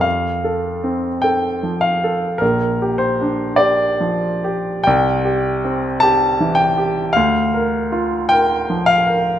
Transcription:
\new Staff \with { instrumentName = "Grand piano" } { \time 4/4 \key bes \lydian \tempo 4 = 51 << { f''4 g''8 f''8 bes'8 c''8 d''4 | g''4 a''8 g''8 f''4 g''8 f''8 | } \\ { \tuplet 3/2 { f,8 a'8 c'8 a'8 f8 a'8 bes,,8 g'8 d'8 g'8 f8 g'8 } | \tuplet 3/2 { c,8 g'8 c'8 g'8 e8 g'8 d,8 bes'8 f'8 bes'8 f8 bes'8 } | } >> }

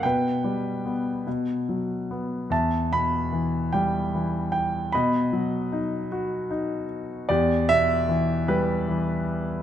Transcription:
<<
  \new Staff \with { instrumentName = "Grand piano" } { \time 6/8 \key e \minor \tempo 4. = 50 << { g''4 r2 | a''8 b''4 g''4 g''8 | b''4 r2 | d''8 e''4 b'4. | } \\ { b'4. r4. | e''4. r4. | dis''4. r4. | g'4. g'4. | } >> }
  \new Staff \with { instrumentName = "Grand piano" } { \clef bass \time 6/8 \key e \minor b,8 g8 b8 b,8 fis8 b8 | e,8 b,8 e8 g8 e4 | b,8 fis8 dis'8 fis'8 dis'4 | e,8 b,8 e8 g8 e4 | }
>>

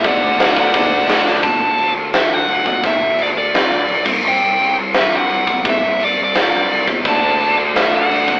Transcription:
<<
  \new Staff \with { instrumentName = "Lead electric guitar" } { \time 4/4 \key d \mixolydian \tempo 4 = 171 fis''4. fis''2 r8 | a''4. r8 e''8 fis''4. | e''4 d''8 d''2 r8 | g''4. r8 e''8 fis''4. |
e''4 d''8 d''2 r8 | a''4. r8 e''8 fis''4. | }
  \new Staff \with { instrumentName = "Distorted electric guitar" } { \time 4/4 \key d \mixolydian <d a d'>4 <d a d'>8 <d a d'>8 <d a d'>4 <d a d'>8 <d a d'>8 | r1 | r1 | r1 |
r1 | <d a d'>4. <d a d'>4. <d a d'>4 | }
  \new Staff \with { instrumentName = "Overdriven electric guitar" } { \time 4/4 \key d \mixolydian <d a d'>4 <d a d'>8 <d a d'>8 <d a d'>4 <d a d'>8 <d a d'>8 | r1 | r1 | r1 |
r1 | <d a d'>1 | }
  \new Staff \with { instrumentName = "Picked electric bass" } { \clef bass \time 4/4 \key d \mixolydian d,8 d,8 d,8 d,8 d,8 d,8 d,8 d,8 | d,8 d,8 d,8 d,8 d,8 d,8 d,8 d,8 | d,8 d,8 d,8 d,8 c8 d,8 b,,8 c,8 | c,8 c,8 c,8 c,8 c,8 c,8 c,8 c,8 |
c,8 c,8 c,8 c,8 a,8 c,8 c,8 e,8 | d,8 d,8 d,8 d,8 d,8 d,8 d,8 d,8 | }
  \new DrumStaff \with { instrumentName = "Drums" } \drummode { \time 4/4 <hho bd>4 <hho sn>8 bd8 <hho bd>4 <hho sn>8 sn8 | <cymc bd>4 cymc4 <cymc sn>4 cymc8 bd8 | <cymc bd>4 cymc4 <cymc sn>4 cymc8 <cymc bd>8 | cymc4 cymc4 <cymc sn>4 cymc8 bd8 |
<cymc bd>4 cymc4 <cymc sn>4 cymc8 bd8 | <cymc bd>4 cymc4 <cymc sn>4 cymc8 bd8 | }
>>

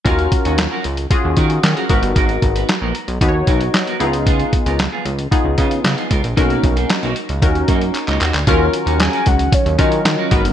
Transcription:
<<
  \new Staff \with { instrumentName = "Soft synth lead" } { \time 4/4 \key ees \minor \tempo 4 = 114 r1 | r1 | r1 | r1 |
r4 aes''8 ges''8 des''8 ees''4 r8 | }
  \new Staff \with { instrumentName = "Clean electric guitar" } { \time 4/4 \key ees \minor <des' ges' bes'>8 r16 <des' ges' des''>16 r16 <des' ges' bes'>16 r4 <des' ges' bes'>16 r8 <des' ges' bes'>16 <ces' ges' ces''>16 r16 | <ces' ges' bes'>8 r16 <ces' ges' ces''>16 r16 <ces' ges' bes'>16 r4 <ces' ges' bes'>16 r8 <ces' ges' bes'>16 <ces' f' aes'>16 r16 | <ces' f' aes'>8 r16 <ces' f' bes'>16 r16 <ces' f' aes'>16 r4 <ces' f' aes'>16 r8 <ces' f' aes'>16 <ces' f' bes'>16 r16 | <ais dis' fis'>8 r16 <ais dis' aes'>16 r16 <ais dis' fis'>16 r4 <ais dis' fis'>16 r8 <ais dis' fis'>16 <ais dis' fis'>16 r16 |
<des' ges' bes'>8 r16 <des' ges' des''>16 r16 <des' ges' bes'>16 r4 <des' ges' bes'>16 r8 <des' ges' bes'>16 <ces' ges' ces''>16 r16 | }
  \new Staff \with { instrumentName = "Analog polysynth" } { \time 4/4 \key ees \minor <des' f' ges' bes'>4. r8 <des' f' ges' aes'>4. <ces' ees' ges' bes'>8~ | <ces' ees' ges' bes'>4 r4 <ces' ees' ges' ces'' des''>4. <ces' ees' fes' f' aes'>8~ | <ces' ees' fes' f' aes'>4 r4 <ces' ees' f' aes'>4. r8 | <des' dis' fis' ais'>4. r8 <des' dis' fis' ais'>4. r8 |
<des' f' ges' bes'>4. r4 <des' f' ges' bes'>4 <ces' ees' ges' bes'>8 | }
  \new Staff \with { instrumentName = "Analog synth pad" } { \time 4/4 \key ees \minor r1 | r1 | r1 | r1 |
<ees ges des'>2.~ <ees ges des'>8 <aes ces' bes'>8 | }
  \new Staff \with { instrumentName = "Analog synth bass" } { \clef bass \time 4/4 \key ees \minor ees,8 r16 ees,8 r16 des,8 r16 ees,16 ees8 ees16 r16 aes,,16 g,,16 | aes,,8 aes,,8 r16 bes,,16 r16 ces,16 ees,8 ces,8 r8 des,8~ | des,8 r16 des,8 r16 des,8 r16 des,16 des8 des16 r16 des,16 bes,,16 | b,,8 b,,8 r16 b,,16 r16 des,16 dis,8 fis,8 r16 des,16 dis,16 d,16 |
ees,8 r16 ees,8 r16 des,8 r16 ees,16 ees8 ees16 r16 aes,,16 g,,16 | }
  \new DrumStaff \with { instrumentName = "Drums" } \drummode { \time 4/4 <hh bd>16 hh16 <hh bd>16 hh16 <hc hh sn>8 hh16 hh16 <hh bd>8 <hh bd>16 hh16 <hc hh sn>16 hh16 <hh bd>16 hh16 | <hh bd>16 hh16 <hh bd>16 hh16 <hc hh sn>8 hh16 hh16 <hh bd>8 <hh bd>16 hh16 <hc hh sn>16 hh16 hh16 hh16 | <hh bd>16 hh16 <hh bd>16 hh16 <hc hh sn>8 hh16 hh16 <hh bd>8 <hh bd>16 hh16 <hc hh sn>16 hh16 <hh bd>16 hh16 | <hh bd>16 hh16 <hh bd>16 hh16 <hc hh sn>16 hh16 hh16 hh16 <hh bd>16 hh16 <hh bd>16 hh16 <hc hh>16 <hc hh>16 <hc hh>16 <hc hh>16 |
<hh bd>8 hh16 hh16 <hc hh sn>16 hh16 <hh bd>16 hh16 <hh bd>16 hh16 <hh bd>16 hh16 <hc hh sn>8 <hh bd>16 hh16 | }
>>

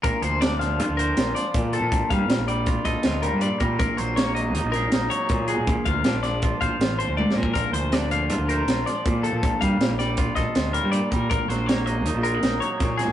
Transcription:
<<
  \new Staff \with { instrumentName = "Clean electric guitar" } { \time 5/4 \key bes \major \tempo 4 = 160 bes'8 c''8 d''8 f''4 bes'4 d''4 a'8~ | a'8 f''4 d''4 ees''4 bes'8 d''8 bes'8 | bes'8 c''8 des''8 ees''4 bes'4 des''4 aes'8~ | aes'8 f''4 d''4 f''4 c''8 d''8 bes'8 |
bes'8 c''8 d''8 f''4 bes'4 d''4 a'8~ | a'8 f''4 d''4 ees''4 bes'8 d''8 bes'8 | bes'8 c''8 des''8 ees''4 bes'4 des''4 aes'8 | }
  \new Staff \with { instrumentName = "Clean electric guitar" } { \clef bass \time 5/4 \key bes \major << { r4 d'4 f'8 c''8 f'2 | r2 f'8 a'8 f'2 | r4 bes4 ees'8 aes'8 ees'2 | r4 d'4 f'8 c''8 f'2 |
r4 d'4 f'8 c''8 f'2 | r2 f'8 a'8 f'2 | r4 bes4 ees'8 f'16 aes'16 ees'2 | } \\ { bes,8 f4 f2 f8 bes,8 f8 | bes,8 g4 g2 g8 bes,8 g8 | bes,8 ges4 ges2 ges8 bes,8 ges8 | bes,8 f4 f2 f8 bes,8 f8 |
bes,8 f4 f2 f8 bes,8 f8 | bes,8 g4 g2 g8 bes,8 g8 | bes,8 ges4 ges2 ges8 bes,8 ges8 | } >> }
  \new Staff \with { instrumentName = "Fingered electric bass" } { \clef bass \time 5/4 \key bes \major bes,,16 r16 d,4. g,16 d,8. bes,,8 r8 bes,8. bes,16 | bes,,16 r16 g,8 bes,16 bes,,4~ bes,,16 bes,,16 r16 d,8. g,8 r16 bes,8 | bes,,16 r16 bes,,4. ees,16 bes,,8. bes,,8 r8 bes,8. bes,16 | bes,,16 r16 d,8 bes,16 bes,,4~ bes,,16 bes,,16 r16 a,,8. d,8 r16 bes,8 |
bes,,16 r16 d,4. g,16 d,8. bes,,8 r8 bes,8. bes,16 | bes,,16 r16 g,8 bes,16 bes,,4~ bes,,16 bes,,16 r16 d,8. g,8 r16 bes,8 | bes,,16 r16 bes,,4. ees,16 bes,,8. bes,,8 r8 bes,8. bes,16 | }
  \new DrumStaff \with { instrumentName = "Drums" } \drummode { \time 5/4 <hh bd>8 hh8 <hh sn>8 <hh sn>8 hh8 hh8 <hh sn>8 <hh sn>8 <hh bd>8 hh8 | <hh bd>8 <hh bd>8 <hh sn>8 hh8 <hh bd>8 <hh bd sn>8 <hh sn>8 hh8 hh8 <hh bd>8 | <hh bd>8 hh8 <hh sn>8 hh8 hh8 <hh sn>8 <hh sn>8 hh8 <hh bd>8 hh8 | <hh bd>8 <hh bd>8 <hh sn>8 <hh sn>8 <hh bd>8 <hh bd>8 <hh sn>8 hh8 \tuplet 3/2 { tommh8 sn8 bd8 } |
<hh bd>8 hh8 <hh sn>8 hh8 hh8 hh8 <hh sn>8 <hh sn>8 <hh bd>8 hh8 | <hh bd>8 <hh bd>8 <hh sn>8 <hh sn>8 <hh bd sn>8 <hh bd sn>8 <hh sn>8 hh8 hh8 <hh bd>8 | <hh bd>8 <hh sn>8 <hh sn>8 hh8 hh8 hh8 <hh sn>8 hh8 <hh bd sn>8 <hh sn>8 | }
>>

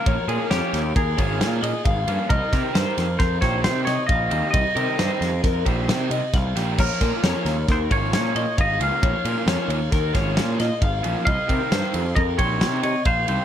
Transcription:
<<
  \new Staff \with { instrumentName = "Clean electric guitar" } { \time 5/4 \key bes \dorian \tempo 4 = 134 des''8 bes'8 des''4 bes'8 des''4 ees''8 f''4 | ees''8 bes'8 c''4 bes'8 c''4 ees''8 f''4 | ees''8 bes'8 c''4 bes'8 c''4 ees''8 f''4 | des''8 bes'8 des''4 bes'8 des''4 ees''8 f''4 |
des''8 bes'8 des''4 bes'8 des''4 ees''8 f''4 | ees''8 bes'8 c''4 bes'8 c'''4 ees''8 f''4 | }
  \new Staff \with { instrumentName = "Clean electric guitar" } { \time 5/4 \key bes \dorian bes'8 aes'8 g'4 aes'2~ aes'8 r8 | bes'2 c''8 des''8 c''8 des''8 ees''4 | ees''1 r4 | bes'2 c''8 des''8 des''4 ees''8 f''8~ |
f''1 r4 | f''2 ees''8 des''4 des''8 c''8 c''8 | }
  \new Staff \with { instrumentName = "Overdriven electric guitar" } { \time 5/4 \key bes \dorian <f bes des' f'>8 <f bes des' f'>8 <f bes des' f'>8 r4 <f bes des' f'>8 <f bes des' f'>8 r4 <f bes des' f'>8 | r8 <ees g c' g'>8 <ees g c' g'>8 r4 <ees g c' g'>8 <ees g c' g'>8 r4 <ees g c' g'>8 | r8 <ees g c' g'>8 <ees g c' g'>8 r4 <ees g c' g'>8 <ees g c' g'>8 r4 <ees g c' g'>8 | r8 <f bes des' f'>8 <f bes des' f'>8 r4 <f bes des' f'>8 <f bes des' f'>8 r4 <f bes des' f'>8 |
r8 <f bes des' f'>8 <f bes des' f'>8 r4 <f bes des' f'>8 <f bes des' f'>8 r4 <f bes des' f'>8 | r8 <ees g c' g'>8 <ees g c' g'>8 r4 <ees g c' g'>8 <ees g c' g'>8 r4 <ees g c' g'>8 | }
  \new Staff \with { instrumentName = "Picked electric bass" } { \clef bass \time 5/4 \key bes \dorian bes,,16 r16 bes,16 r16 f,16 r16 ees,8 ees,8 aes,,8 bes,8 bes,16 r16 aes,,8 g,16 r16 | c,16 r16 c16 r16 g,16 r16 f,8 f,8 bes,,8 c8 c16 r16 bes,,8 ees,16 r16 | c,16 r16 c16 r16 g,16 r16 f,8 f,8 bes,,8 c8 c16 r16 c,8 bes,,8 | bes,,16 r16 bes,16 r16 f,16 r16 ees,8 ees,8 aes,,8 bes,8 bes,16 r16 aes,,8 des,16 r16 |
bes,,16 r16 bes,16 r16 f,16 r16 ees,8 ees,8 aes,,8 bes,8 bes,16 r16 aes,,8 bes,,16 r16 | c,16 r16 c16 r16 g,16 r16 f,8 f,8 bes,,8 c8 c16 r16 bes,,8 c,16 r16 | }
  \new DrumStaff \with { instrumentName = "Drums" } \drummode { \time 5/4 <bd cymr>8 cymr8 <cymr sn>8 <cymr sn>8 <bd cymr>8 <bd cymr>8 <cymr sn>8 cymr8 <bd cymr>8 cymr8 | <bd cymr>8 <bd cymr sn>8 <cymr sn>8 <cymr sn>8 <bd cymr sn>8 <bd cymr sn>8 <cymr sn>8 <cymr sn>8 <bd cymr>8 cymr8 | <bd cymr>8 cymr8 <cymr sn>8 <cymr sn>8 <bd cymr sn>8 <bd cymr>8 <cymr sn>8 cymr8 <bd cymr sn>8 <cymr sn>8 | <cymc bd>8 <bd cymr sn>8 <cymr sn>8 <cymr sn>8 <bd cymr sn>8 <bd cymr>8 <cymr sn>8 cymr8 <bd cymr>8 cymr8 |
<bd cymr>8 cymr8 <cymr sn>8 cymr8 <bd cymr sn>8 <bd cymr sn>8 <cymr sn>8 <cymr sn>8 <bd cymr>8 cymr8 | <bd cymr>8 <bd cymr>8 <cymr sn>8 cymr8 <bd cymr>8 <bd cymr>8 <cymr sn>8 cymr8 <bd cymr>8 cymr8 | }
>>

